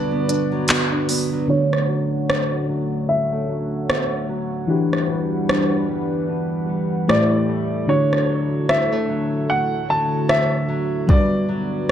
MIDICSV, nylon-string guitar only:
0, 0, Header, 1, 2, 480
1, 0, Start_track
1, 0, Key_signature, 2, "major"
1, 0, Tempo, 800000
1, 893, Time_signature, 4, 2, 24, 8
1, 7150, End_track
2, 0, Start_track
2, 0, Title_t, "Nylon-string guitar"
2, 0, Program_c, 0, 24
2, 0, Note_on_c, 0, 43, 85
2, 0, Note_on_c, 0, 50, 81
2, 0, Note_on_c, 0, 54, 56
2, 0, Note_on_c, 0, 59, 63
2, 0, Note_on_c, 0, 62, 68
2, 62, Note_off_c, 0, 59, 0
2, 69, Note_on_c, 0, 59, 60
2, 112, Note_off_c, 0, 50, 0
2, 169, Note_off_c, 0, 62, 0
2, 171, Note_on_c, 0, 62, 64
2, 308, Note_off_c, 0, 54, 0
2, 310, Note_on_c, 0, 54, 62
2, 404, Note_off_c, 0, 59, 0
2, 412, Note_on_c, 0, 59, 66
2, 549, Note_off_c, 0, 62, 0
2, 552, Note_on_c, 0, 62, 70
2, 645, Note_off_c, 0, 59, 0
2, 652, Note_on_c, 0, 59, 63
2, 789, Note_off_c, 0, 54, 0
2, 792, Note_on_c, 0, 54, 60
2, 893, Note_on_c, 0, 50, 78
2, 948, Note_off_c, 0, 43, 0
2, 948, Note_off_c, 0, 59, 0
2, 1130, Note_off_c, 0, 54, 0
2, 1133, Note_on_c, 0, 54, 54
2, 1373, Note_on_c, 0, 57, 51
2, 1611, Note_off_c, 0, 54, 0
2, 1613, Note_on_c, 0, 54, 54
2, 1850, Note_off_c, 0, 57, 0
2, 1853, Note_on_c, 0, 55, 55
2, 1992, Note_off_c, 0, 55, 0
2, 1992, Note_on_c, 0, 57, 47
2, 2092, Note_off_c, 0, 54, 0
2, 2094, Note_on_c, 0, 54, 53
2, 2332, Note_off_c, 0, 62, 0
2, 2335, Note_on_c, 0, 59, 64
2, 2474, Note_off_c, 0, 59, 0
2, 2474, Note_on_c, 0, 61, 57
2, 2572, Note_off_c, 0, 54, 0
2, 2574, Note_on_c, 0, 54, 59
2, 2812, Note_off_c, 0, 50, 0
2, 2814, Note_on_c, 0, 52, 75
2, 2868, Note_off_c, 0, 57, 0
2, 2869, Note_off_c, 0, 61, 0
2, 3051, Note_off_c, 0, 54, 0
2, 3053, Note_on_c, 0, 55, 57
2, 3293, Note_on_c, 0, 62, 52
2, 3530, Note_off_c, 0, 55, 0
2, 3532, Note_on_c, 0, 55, 57
2, 3764, Note_off_c, 0, 62, 0
2, 3772, Note_on_c, 0, 62, 57
2, 4004, Note_off_c, 0, 55, 0
2, 4012, Note_on_c, 0, 55, 54
2, 4251, Note_on_c, 0, 45, 76
2, 4308, Note_off_c, 0, 55, 0
2, 4308, Note_off_c, 0, 62, 0
2, 4309, Note_off_c, 0, 52, 0
2, 4492, Note_on_c, 0, 55, 58
2, 4731, Note_on_c, 0, 50, 79
2, 4788, Note_off_c, 0, 45, 0
2, 4788, Note_off_c, 0, 55, 0
2, 4973, Note_on_c, 0, 54, 59
2, 5214, Note_on_c, 0, 55, 52
2, 5353, Note_off_c, 0, 55, 0
2, 5353, Note_on_c, 0, 57, 49
2, 5451, Note_off_c, 0, 54, 0
2, 5453, Note_on_c, 0, 54, 57
2, 5684, Note_off_c, 0, 57, 0
2, 5691, Note_on_c, 0, 57, 54
2, 5929, Note_off_c, 0, 54, 0
2, 5931, Note_on_c, 0, 54, 55
2, 6170, Note_on_c, 0, 61, 64
2, 6409, Note_off_c, 0, 54, 0
2, 6411, Note_on_c, 0, 54, 59
2, 6650, Note_on_c, 0, 43, 76
2, 6707, Note_off_c, 0, 61, 0
2, 6708, Note_off_c, 0, 57, 0
2, 6831, Note_off_c, 0, 50, 0
2, 6889, Note_off_c, 0, 54, 0
2, 6891, Note_on_c, 0, 54, 57
2, 7150, Note_off_c, 0, 43, 0
2, 7150, Note_off_c, 0, 54, 0
2, 7150, End_track
0, 0, End_of_file